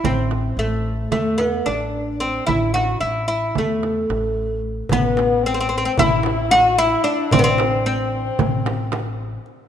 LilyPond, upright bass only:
\new Staff \with { instrumentName = "Upright bass" } { \clef bass \time 9/8 \tempo 4. = 74 a,,4 a,,4 e,4 a,,4. | a,,4 a,,4 e,4 a,,4. | a,,2 a,,2 r8 | a,,2 a,,2 r8 | }